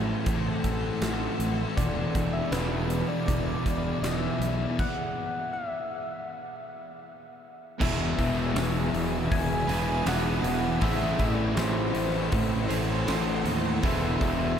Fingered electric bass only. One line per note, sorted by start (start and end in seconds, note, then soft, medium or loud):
0.00 0.13 A1 medium
0.26 0.51 A1 medium
0.65 0.89 A1 medium
1.02 1.27 A1 medium
1.39 1.64 A1 medium
1.78 2.02 E1 loud
2.15 2.40 E1 medium
2.52 3.02 E1 loud
3.28 3.53 E1 medium
3.66 3.91 E1 medium
4.02 4.27 E1 medium
4.40 4.65 B1 medium
7.81 8.14 E1 loud
8.18 8.52 E1 loud
8.55 8.89 E1 medium
8.93 9.27 E1 medium
9.31 9.65 E1 medium
9.68 10.02 E1 medium
10.06 10.40 E1 medium
10.43 10.77 E1 medium
10.82 11.15 A1 loud
11.19 11.53 A1 medium
11.57 11.91 A1 loud
11.95 12.28 A1 medium
12.33 12.66 A1 medium
12.70 13.04 A1 medium
13.08 13.42 A1 medium
13.45 13.79 D#2 medium
13.83 14.17 E1 medium
14.21 14.55 E1 medium